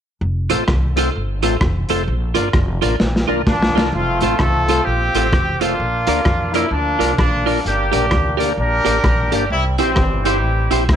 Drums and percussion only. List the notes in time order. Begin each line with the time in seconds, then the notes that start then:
0.50 closed hi-hat
0.68 kick, cross-stick
0.97 closed hi-hat
1.43 closed hi-hat
1.61 kick, cross-stick
1.89 closed hi-hat
2.35 closed hi-hat
2.53 kick, cross-stick
2.82 closed hi-hat
3.00 snare
3.16 snare
3.47 kick, snare
3.63 snare
3.78 snare
4.21 closed hi-hat
4.39 kick, cross-stick
4.68 closed hi-hat
5.15 closed hi-hat
5.33 kick, cross-stick
5.61 closed hi-hat
6.07 closed hi-hat
6.25 kick, cross-stick
6.54 closed hi-hat
7.01 closed hi-hat
7.18 kick, cross-stick
7.47 open hi-hat
7.65 hi-hat pedal
7.93 closed hi-hat
8.11 kick, cross-stick
8.40 closed hi-hat
8.86 closed hi-hat
9.04 kick, cross-stick
9.32 closed hi-hat
9.78 closed hi-hat
9.96 kick, cross-stick
10.25 closed hi-hat
10.71 closed hi-hat
10.89 kick, cross-stick